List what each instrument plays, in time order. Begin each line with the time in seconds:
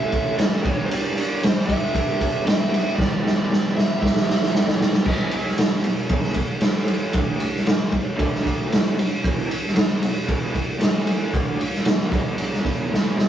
Already playing: overdriven electric guitar A3 C#4 A4, lead electric guitar E5
0.12 kick, ride
0.36 overdriven electric guitar E3 A3 C#4, lead electric guitar D5, snare, ride
0.40 overdriven electric guitar A4
0.63 overdriven electric guitar G2 D3 G3 B3 D4 G4, kick, ride
0.73 lead electric guitar C#5
0.86 overdriven electric guitar G2, lead electric guitar D5
0.90 overdriven electric guitar D3 G3 B3 D4 G4, ride
1.16 overdriven electric guitar G3 B3 D4 G4, ride
1.42 overdriven electric guitar G2 D3 G3 B3 D4, snare, ride
1.46 overdriven electric guitar G4, lead electric guitar C5
1.66 overdriven electric guitar B3 D4 G4, lead electric guitar E5, kick, ride
1.70 overdriven electric guitar G3
1.95 kick, ride
2.21 kick, ride
2.44 overdriven electric guitar G3 B3 D4 G4, lead electric guitar E5, snare, ride
2.72 overdriven electric guitar G3 B3 D4 G4, ride
2.96 overdriven electric guitar E2 B2 E3 G3, lead electric guitar D5, kick, snare
3.01 overdriven electric guitar B3 G4
3.24 overdriven electric guitar E3 G3 B3 G4, snare
3.36 lead electric guitar D5
3.49 overdriven electric guitar E2 B2 E3 G3 B3 G4, snare
3.75 overdriven electric guitar G3 B3 G4, lead electric guitar E5, snare
3.79 overdriven electric guitar E3
4.03 lead electric guitar E5, kick, snare
4.16 snare
4.29 snare
4.42 snare
4.52 overdriven electric guitar E3 G3 B3 G4, snare
4.68 snare
4.80 overdriven electric guitar E3 G3 B3 G4, snare
4.93 snare
5.05 overdriven electric guitar E2 B2 E3, kick, crash
5.31 muted overdriven electric guitar stroke, ride
5.46 snare
5.58 overdriven electric guitar G2 D3 G3, snare, ride
5.84 overdriven electric guitar E2 B2, ride
6.09 overdriven electric guitar E2 B2 E3, kick, ride
6.23 snare
6.34 muted overdriven electric guitar stroke, kick, ride
6.61 overdriven electric guitar A2 E3 A3, snare, ride
6.88 ride
7.13 overdriven electric guitar D3 A3 D4, kick, ride
7.40 muted overdriven electric guitar stroke, ride
7.56 snare
7.66 overdriven electric guitar A#2 F3 A#3, snare, ride
7.92 muted overdriven electric guitar stroke, kick, ride
8.16 overdriven electric guitar D3 A3 D4, kick, ride
8.34 snare
8.46 kick, ride
8.68 overdriven electric guitar A2 E3 A3
8.72 snare, ride
8.95 overdriven electric guitar E2 B2, ride
9.23 overdriven electric guitar E2 B2 E3, kick, ride
9.49 muted overdriven electric guitar stroke, ride
9.66 snare
9.74 overdriven electric guitar G2 D3 G3, snare, ride
10.03 overdriven electric guitar E2 B2, ride
10.27 overdriven electric guitar E2 B2 E3, kick, ride
10.54 muted overdriven electric guitar stroke, kick, ride
10.79 overdriven electric guitar A2 E3 A3, snare, ride
11.07 ride
11.34 overdriven electric guitar D3 A3 D4, kick, ride
11.59 muted overdriven electric guitar stroke, ride
11.74 snare
11.85 overdriven electric guitar A#2 F3 A#3, snare, ride
12.10 overdriven electric guitar G2 D3 G3, kick, ride
12.38 ride
12.53 snare
12.63 overdriven electric guitar E2 B2 E3, kick, ride
12.90 overdriven electric guitar A2 E3 A3, snare
13.15 overdriven electric guitar E2 B2 E3, snare